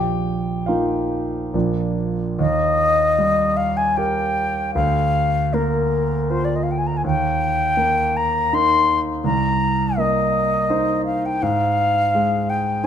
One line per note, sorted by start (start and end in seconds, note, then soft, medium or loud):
0.00 0.65 A#1 soft
0.00 0.63 G4 medium
0.00 0.67 G5 medium
0.66 1.50 F3 soft
0.66 1.51 A#3 soft
0.66 1.51 D#4 soft
0.66 1.93 F4 soft
0.66 1.97 F5 medium
1.54 2.36 A#1 soft
1.54 2.35 F3 soft
1.54 2.35 A#3 soft
1.54 2.35 D4 soft
2.39 4.70 D#2 medium
2.39 3.58 D#5 loud
3.18 4.44 G3 soft
3.57 3.78 F5 medium
3.77 3.98 G#5 medium
3.97 4.71 G4 soft
3.97 4.71 A#4 soft
3.97 4.74 G5 loud
4.75 7.00 D2 medium
4.75 5.55 F5 loud
5.54 6.75 A#3 soft
5.54 6.32 A#4 medium
6.30 7.00 F4 soft
6.30 7.00 A#4 soft
6.30 6.46 C5 medium
6.44 6.57 D5 medium
6.56 6.65 D#5 medium
6.63 6.72 F5 medium
6.71 6.80 G5 medium
6.78 6.88 G#5 medium
6.87 6.98 A#5 medium
6.97 7.05 G#5 medium
7.04 9.20 D#2 medium
7.04 8.18 G5 loud
7.77 8.95 A#3 soft
8.16 8.55 A#5 medium
8.53 9.21 D#4 soft
8.53 9.21 A#4 soft
8.53 9.00 C6 loud
9.24 11.37 C2 medium
9.24 10.00 A#5 loud
9.98 11.13 A#3 soft
9.98 11.05 D#5 medium
10.70 11.38 D#4 soft
10.70 11.38 C5 medium
11.05 11.27 F5 medium
11.25 11.44 G5 medium
11.42 12.87 G#2 medium
11.42 12.51 F5 loud
12.15 12.87 G#3 soft
12.49 12.86 G5 medium
12.84 12.87 D#4 soft
12.84 12.87 C5 soft